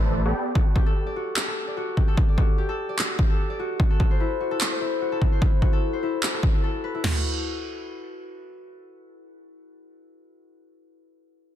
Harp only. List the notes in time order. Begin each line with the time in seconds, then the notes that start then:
0.55 F#4
0.76 G4
0.86 A4
1.07 D5
1.16 F#4
1.36 G4
1.47 A4
1.67 D5
1.77 F#4
1.97 G4
2.08 A4
2.28 D5
2.38 F#4
2.58 G4
2.69 A4
2.89 D5
2.99 F#4
3.19 G4
3.30 A4
3.50 D5
3.59 F#4
3.80 F#4
3.90 A4
4.11 C5
4.20 E4
4.40 F#4
4.51 A4
4.71 C5
4.81 E4
5.01 F#4
5.12 A4
5.32 C5
5.42 E4
5.62 F#4
5.73 A4
5.93 C5
6.03 E4
6.23 F#4
6.34 A4
6.54 A4
6.64 A4
6.84 B4
6.95 E4
7.04 F#4